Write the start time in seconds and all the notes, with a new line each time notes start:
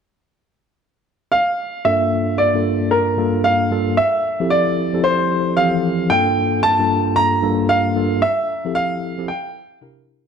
1.32 F5
1.85 G2 A#3 D4 F4 A4 E5
2.38 D5
2.54 G2 A#3 D4 F4 A4
2.91 A#4
3.18 G2 A#3 D4 F4 A4
3.44 F5
3.71 G2 A#3 D4 F4 A4
3.97 E5
4.40 F3 C4 E4 G4 A4
4.50 D5
4.93 F3 C4 E4 G4 A4
5.04 C5
5.57 E3 F3 C4 G4 A4 F5
6.10 G2 A#3 D4 F4 A4 G5
6.63 A5
6.79 G2 A#3 D4 F4 A4
7.16 A#5
7.42 G2 A#3 D4 F4 A4
7.69 F5
7.95 G2 A#3 D4 F4 A4
8.22 E5
8.65 F3 C4 E4 G4 A4
8.75 F5
9.18 F3 C4 E4 G4 A4
9.28 G5
9.81 C3 D4 E4 G4 A#4